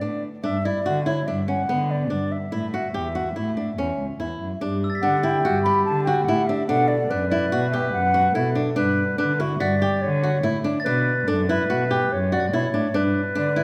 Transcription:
0.00 0.19 A2 medium
0.00 0.27 D4 medium
0.00 0.23 D5 medium
0.43 0.78 G2 medium
0.43 0.56 D4 medium
0.43 0.67 E5 medium
0.65 0.78 E4 medium
0.65 1.06 D5 medium
0.85 1.20 D3 medium
0.85 0.99 F#4 medium
1.06 1.19 E4 medium
1.06 1.28 C#5 medium
1.26 1.62 G2 medium
1.26 1.40 D4 medium
1.26 1.50 E5 medium
1.48 1.61 C#4 medium
1.48 1.92 F#5 medium
1.68 2.12 D3 medium
1.68 1.95 B3 medium
1.90 2.33 D5 medium
2.10 2.28 G2 medium
2.10 2.36 D4 medium
2.32 4.20 E5 medium
2.52 2.87 A2 medium
2.52 2.65 E4 medium
2.74 2.87 F#4 medium
2.94 3.29 E2 medium
2.94 3.07 G4 medium
3.15 3.28 F#4 medium
3.36 3.71 A2 medium
3.36 3.49 E4 medium
3.57 3.70 D4 medium
3.77 3.98 E2 medium
3.77 4.04 C#4 medium
3.99 4.18 C#2 medium
4.20 4.39 E2 medium
4.20 4.46 E4 medium
4.41 4.59 F#2 medium
4.61 4.96 G2 medium
4.61 4.87 D4 medium
4.61 6.65 G4 medium
4.84 6.01 E6 soft
4.90 6.04 A6 soft
4.95 6.07 B6 soft
5.02 5.38 D3 medium
5.02 5.16 D4 medium
5.02 5.25 F#5 medium
5.23 5.36 E4 medium
5.23 5.63 G5 medium
5.45 5.80 G2 medium
5.45 5.58 F#4 medium
5.63 5.92 G4 medium
5.63 5.84 B5 medium
5.85 6.22 D3 medium
5.85 6.03 A5 medium
6.04 6.20 F#4 medium
6.04 6.26 G5 medium
6.24 6.45 A2 medium
6.24 6.48 F#5 medium
6.28 6.41 E4 medium
6.47 6.62 D4 medium
6.47 6.66 E5 medium
6.67 7.04 B2 medium
6.67 6.95 D4 medium
6.67 7.11 A4 medium
6.67 6.89 F#5 medium
6.88 7.29 D5 medium
7.10 7.46 F#2 medium
7.10 7.24 D4 medium
7.10 8.36 B4 medium
7.29 7.45 E4 medium
7.29 7.69 D5 medium
7.52 7.88 B2 medium
7.52 7.65 F#4 medium
7.71 8.00 G4 medium
7.71 7.91 E5 medium
7.93 8.29 F#2 medium
7.93 8.32 F#5 medium
8.14 8.28 F#4 medium
8.34 8.53 B2 medium
8.34 8.48 E4 medium
8.34 8.76 A4 medium
8.55 8.69 D4 medium
8.76 9.13 G2 medium
8.76 9.03 D4 medium
8.76 9.16 B4 medium
9.18 9.54 D3 medium
9.18 9.32 D4 medium
9.18 9.42 B4 medium
9.40 9.53 E4 medium
9.40 9.62 F#4 medium
9.60 9.96 G2 medium
9.60 9.74 F#4 medium
9.60 10.03 D5 loud
9.60 10.78 B6 medium
9.82 10.08 G4 medium
10.02 10.38 D3 medium
10.02 10.59 C#5 medium
10.23 10.37 F#4 medium
10.43 10.62 A2 medium
10.43 10.57 E4 medium
10.64 10.78 D4 medium
10.80 11.05 A6 medium
10.84 11.21 B2 medium
10.84 11.12 D4 medium
10.84 11.30 B4 medium
11.28 11.63 F#2 medium
11.28 11.41 D4 medium
11.28 11.48 A4 medium
11.49 11.62 E4 medium
11.49 12.14 B4 medium
11.69 12.04 B2 medium
11.69 11.83 F#4 medium
11.91 12.17 G4 medium
12.11 12.46 F#2 medium
12.11 12.34 C#5 medium
12.32 12.45 F#4 medium
12.32 12.55 D5 medium
12.40 13.11 A6 soft
12.53 12.72 B2 medium
12.53 12.66 E4 medium
12.53 12.97 C#5 medium
12.73 12.92 A2 medium
12.73 12.87 D4 medium
12.94 13.29 G2 medium
12.94 13.20 D4 medium
12.94 13.63 B4 medium
13.35 13.63 D3 medium
13.35 13.49 D4 medium
13.35 13.63 D5 medium
13.56 13.63 E4 medium

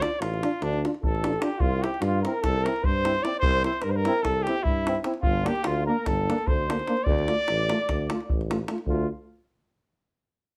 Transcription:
0.00 0.08 D4 medium
0.00 0.10 F4 medium
0.00 0.22 D5 loud
0.00 davul high medium
0.20 0.43 A1 medium
0.20 0.64 F4 medium
0.20 davul high medium
0.34 davul high soft
0.43 0.50 D4 medium
0.43 0.51 F4 medium
0.43 davul high medium
0.62 0.85 D2 loud
0.62 0.85 D4 loud
0.62 davul high medium
0.73 davul high soft
0.84 0.92 D4 medium
0.84 0.91 F4 medium
0.84 davul high medium
0.94 davul high soft
1.03 1.36 A1 medium
1.03 1.40 A4 medium
1.03 1.45 A4 medium
1.03 davul low medium
1.15 davul high soft
1.23 1.31 D4 medium
1.23 1.31 F4 medium
1.23 davul high medium
1.33 davul high soft
1.39 1.49 D4 medium
1.39 1.50 F4 medium
1.39 1.59 G4 medium
1.39 davul high medium
1.43 1.62 G4 medium
1.58 1.84 C2 loud
1.58 1.81 F4 medium
1.58 1.84 F4 loud
1.58 davul low loud
1.80 1.91 C4 medium
1.80 1.90 E4 medium
1.80 2.03 G4 medium
1.80 2.04 G4 medium
1.80 davul high medium
1.94 davul high soft
2.01 2.24 G2 loud
2.01 2.21 F4 medium
2.01 2.24 F4 medium
2.01 davul high medium
2.22 2.33 C4 medium
2.22 2.33 E4 medium
2.22 2.44 A#4 medium
2.22 davul high medium
2.42 2.67 C2 loud
2.42 2.67 A4 medium
2.42 2.66 A4 loud
2.42 davul high medium
2.42 davul low medium
2.64 2.73 C4 medium
2.64 2.73 E4 medium
2.64 2.87 A#4 loud
2.64 2.85 A#4 medium
2.64 davul high medium
2.76 davul high soft
2.83 3.17 G2 medium
2.83 3.24 C5 medium
2.83 3.25 C5 loud
2.83 davul low medium
3.04 3.12 C4 medium
3.04 3.13 E4 medium
3.04 davul high medium
3.15 davul high soft
3.22 3.32 C4 medium
3.22 3.31 E4 medium
3.22 3.38 D5 medium
3.22 3.39 D5 loud
3.22 davul high medium
3.34 3.60 C5 loud
3.34 davul high soft
3.40 3.66 C2 loud
3.40 3.62 C5 loud
3.40 davul low loud
3.61 3.71 C4 medium
3.61 3.85 C5 medium
3.61 davul high medium
3.65 3.73 E4 medium
3.65 3.84 C5 loud
3.73 davul high soft
3.82 4.07 G2 loud
3.82 3.93 A#4 medium
3.82 3.91 A#4 medium
3.82 davul high medium
3.89 3.98 C5 medium
3.96 4.25 A#4 loud
3.96 4.28 A#4 medium
4.05 4.14 C4 medium
4.05 4.13 E4 medium
4.05 davul high medium
4.23 4.47 C2 medium
4.23 4.44 A4 loud
4.23 4.46 A4 medium
4.23 davul high medium
4.23 davul low medium
4.43 4.65 G4 loud
4.43 4.65 G4 medium
4.47 4.55 C4 medium
4.47 4.55 E4 medium
4.47 davul high medium
4.58 davul high soft
4.63 4.96 G2 medium
4.63 4.98 E4 loud
4.63 4.98 E4 medium
4.63 davul low medium
4.87 4.94 C4 medium
4.87 4.95 E4 medium
4.87 davul high medium
4.95 davul high soft
5.04 5.12 C4 medium
5.04 5.13 E4 medium
5.04 davul high medium
5.14 davul high soft
5.21 5.47 G1 loud
5.21 5.46 F4 loud
5.21 5.49 F4 loud
5.21 davul low loud
5.44 5.53 A#3 medium
5.44 5.52 D4 medium
5.44 5.65 G4 medium
5.44 5.68 G4 loud
5.44 davul high medium
5.56 davul high soft
5.63 5.88 D2 loud
5.63 5.85 F4 medium
5.63 5.86 F4 medium
5.63 davul high medium
5.86 5.96 A#3 medium
5.86 5.94 D4 medium
5.86 6.07 A#4 medium
5.86 6.09 A#4 medium
6.05 6.30 G1 medium
6.05 6.52 A4 medium
6.05 6.49 A4 loud
6.05 davul high medium
6.05 davul low medium
6.28 6.36 A#3 medium
6.28 6.36 D4 medium
6.28 davul high medium
6.38 davul high soft
6.47 6.80 D2 medium
6.47 7.05 C5 loud
6.47 7.09 C5 medium
6.47 davul low medium
6.68 6.77 A#3 medium
6.68 6.75 D4 medium
6.68 davul high medium
6.79 davul high soft
6.87 6.95 A#3 medium
6.87 6.94 D4 medium
6.87 davul high medium
6.97 davul high soft
7.04 7.29 D2 loud
7.04 8.49 D5 loud
7.04 8.51 D5 medium
7.04 davul low loud
7.19 davul high soft
7.27 7.37 A3 medium
7.27 7.35 F4 medium
7.27 davul high medium
7.48 7.71 A1 loud
7.48 davul high medium
7.69 7.78 A3 medium
7.69 7.77 F4 medium
7.69 davul high medium
7.79 davul high soft
7.89 8.11 D2 loud
7.89 davul high medium
7.89 davul low medium
8.10 8.18 A3 medium
8.10 8.19 F4 medium
8.10 davul high medium
8.20 davul high soft
8.30 8.62 A1 medium
8.30 davul low medium
8.41 davul high soft
8.51 8.58 A3 medium
8.51 8.58 F4 medium
8.51 davul high medium
8.68 8.77 A3 medium
8.68 8.78 F4 medium
8.68 davul high medium
8.78 davul high soft
8.86 9.07 D2 loud
8.86 9.07 A3 medium
8.86 9.08 F4 medium
8.86 davul low medium

